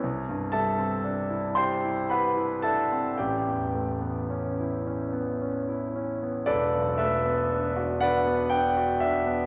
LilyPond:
\new Staff \with { instrumentName = "Grand piano" } { \time 6/8 \key e \minor \tempo 4. = 38 << { r8 <a' e'' a''>4 <c'' g'' c'''>8 <b' fis'' b''>8 <a' e'' a''>8 | <g' d'' g''>4. r4. | <a' b' d''>8 <a' b' e''>4 <b' d'' fis''>8 g''8 e''8 | } \\ { c,16 g,16 g16 c'16 d'16 e'16 g'16 e'16 g'16 e'16 d'16 c'16 | a,,16 e,16 a16 b16 cis'16 e'16 cis'16 b16 cis'16 e'16 cis'16 b16 | e,,16 b,,16 a16 b16 d'16 fis'16 d'16 b16 d'16 fis'16 d'16 b16 | } >> }